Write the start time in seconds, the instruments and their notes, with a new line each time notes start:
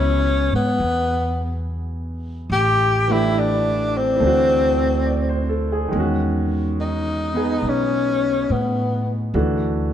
Already playing: upright bass C#2, grand piano F#3 B3 E4 G#4, tenor saxophone C#4
0.52 upright bass G#2, tenor saxophone B3
0.80 upright bass E2
2.50 upright bass A1, tenor saxophone G4
3.08 grand piano E3 A3 D4
3.12 tenor saxophone E4, grand piano G4
3.39 tenor saxophone D4
3.97 tenor saxophone C4
4.16 upright bass D2, grand piano E3 A3
4.23 grand piano D4 F#4
5.06 grand piano D5
5.29 grand piano C5
5.49 grand piano A4
5.72 grand piano G#4
5.88 grand piano D#3 G#3
5.93 upright bass E2, grand piano C#4
6.00 grand piano F#4
6.81 tenor saxophone D#4
7.34 grand piano B3 D#4 G#4
7.62 upright bass B1
7.69 tenor saxophone C#4
8.50 upright bass A2, tenor saxophone B3
9.34 upright bass D2, grand piano E3 D4 F#4 A4